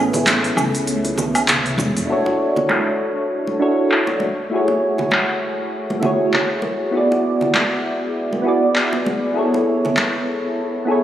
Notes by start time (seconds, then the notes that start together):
Already playing: A1 A3 B3 C#4 E4 G#4
0.13 open hi-hat, high bongo, low conga, shaker
0.26 clap, open hi-hat, high conga, shaker
0.44 open hi-hat
0.57 C#2, low woodblock, shaker
0.75 open hi-hat, shaker
0.87 open hi-hat, shaker
1.05 open hi-hat, high bongo, high conga
1.18 low conga, shaker
1.35 open hi-hat, low woodblock, shaker
1.47 clap, open hi-hat, high tom, low conga, shaker
1.66 open hi-hat, high tom
1.78 E1, high conga, shaker
1.97 mid tom, open hi-hat, shaker
2.06 D4 E4 F#4
2.10 A4 C#5
2.26 high bongo
2.56 high bongo, low conga
2.69 clap, high conga
3.47 high conga
3.59 D4 E4 F#4 A4 C#5
3.92 clap
4.07 high bongo
4.20 high conga
4.50 A3 E4 F#4
4.54 G#4 C#5
4.68 high bongo
4.98 high bongo, low conga
5.11 clap, high conga
5.90 high bongo, high conga
6.00 A3 E4 F#4, low conga
6.05 G#4 C#5
6.33 clap, low conga
6.62 high conga
6.91 B3 E4 F#4
6.95 G#4 D5
7.12 high bongo
7.41 high bongo, low conga
7.54 clap, high conga
8.33 high conga
8.42 B3 E4 F#4
8.46 G#4 D5
8.76 clap
8.93 high bongo
9.06 high conga
9.32 B3 E4 G#4
9.37 A4 C#5
9.54 high bongo
9.85 high bongo, low conga
9.97 clap, high conga
10.85 B3 E4 G#4
10.90 A4 C#5